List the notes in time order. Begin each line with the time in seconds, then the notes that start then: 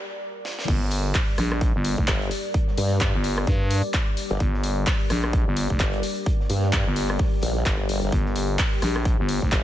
Already playing: G3 G4 A#4 D5
0.45 snare
0.59 snare
0.68 G1 G3 G4 A#4 D5, kick, closed hi-hat, crash
0.82 snare
0.91 closed hi-hat, open hi-hat
1.15 kick, snare, clap, open hi-hat
1.38 A#1, cross-stick, closed hi-hat, open hi-hat
1.52 cross-stick
1.61 kick, closed hi-hat
1.75 G1
1.85 closed hi-hat, open hi-hat
1.98 F1, kick, snare
2.08 G1, kick, snare, clap, closed hi-hat
2.22 closed hi-hat
2.31 closed hi-hat, open hi-hat
2.54 kick, closed hi-hat
2.68 snare
2.77 G2, closed hi-hat, open hi-hat
2.91 snare
3.01 kick, snare, clap, closed hi-hat
3.14 G1
3.24 closed hi-hat, open hi-hat
3.38 cross-stick
3.47 G2, kick, closed hi-hat
3.71 closed hi-hat, open hi-hat
3.93 kick, snare, clap, closed hi-hat
4.17 closed hi-hat, open hi-hat
4.31 G1
4.40 G1, kick, closed hi-hat
4.54 snare
4.63 closed hi-hat, open hi-hat
4.87 kick, snare, clap, open hi-hat
5.10 A#1, cross-stick, closed hi-hat, open hi-hat
5.24 cross-stick
5.33 kick, closed hi-hat
5.47 G1
5.57 closed hi-hat, open hi-hat
5.70 F1, kick, snare
5.79 G1, kick, snare, clap, closed hi-hat
5.93 closed hi-hat
6.03 closed hi-hat, open hi-hat
6.26 kick, closed hi-hat
6.40 snare
6.50 G2, closed hi-hat, open hi-hat
6.63 snare
6.73 kick, snare, clap, closed hi-hat
6.87 G1
6.96 closed hi-hat, open hi-hat
7.10 cross-stick
7.19 kick, snare, open hi-hat
7.42 A#1, closed hi-hat, open hi-hat
7.66 G1, kick, snare, clap, closed hi-hat
7.89 closed hi-hat, open hi-hat
8.03 G1
8.12 G1 C5, kick, closed hi-hat
8.26 snare
8.36 closed hi-hat, open hi-hat
8.59 kick, snare, clap, open hi-hat
8.82 A#1, cross-stick, closed hi-hat, open hi-hat
8.96 cross-stick
9.05 kick, closed hi-hat
9.19 G1
9.29 closed hi-hat, open hi-hat
9.42 F1, kick, snare
9.52 G1, kick, snare, clap, closed hi-hat